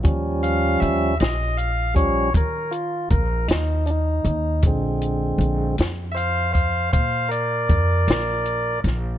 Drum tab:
HH |xxxxxxxxxxxx|xxxxxxxxxxxx|
SD |---o-----o--|---o-----o-o|
BD |o----oo-o---|o----oo-o---|